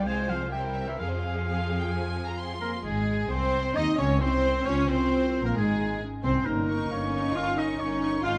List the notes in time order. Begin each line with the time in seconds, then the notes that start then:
0.05 C2 G#3 C4 G#4 C5 F5 G#5
0.17 F4 C5
0.28 F3 C4 G#4 F5
0.40 F4 C5
0.51 G3 G4 A#4 E5 G5
0.55 C4
0.62 E4 C5
0.74 C4 G4 E5
0.86 E3 E4 C5 E5
0.98 F2 F3 C4 G#4 F5
1.10 F4 C5
1.22 C4 G#4 F5
1.34 F4 C5
1.46 C4 G#4 F5
1.58 F4
1.70 C4 G#4
1.80 F4 G5
1.91 C4 G#4 G#5
2.06 F4
2.17 C4 G#4
2.28 F4 A#5
2.40 C4 G#4 C6
2.53 F4
2.61 A#3 C4 G#4 A#4
2.74 F4
2.84 G#1 G#3 G#4
3.30 C2 C4 C5
3.75 D#2 C4 D#4 D#5
3.98 C#2 C#4 C#5
4.21 C2 C4 C5
4.67 C#2 C#4 F4 C#5
4.88 C2 C4 C5
5.44 A#1 A#3 A#4
5.55 G#1 G#3 D#4 G#4
6.03 C#4
6.22 C2 C4 C5
6.45 G1 A#3 C#4 D#4 A#4
6.68 D#4 A#4 C#6
6.90 G1 A#3 C#4 C#5
7.11 D#4 A#4 C#6
7.35 G1 C#4 F4 F5
7.56 D#4 A#4 D#5 C#6
7.79 G1 C#4 D#4 C#5
8.01 D#4 A#4 C#6
8.22 G#1 C4 D#4 F4 G#4 F5 C6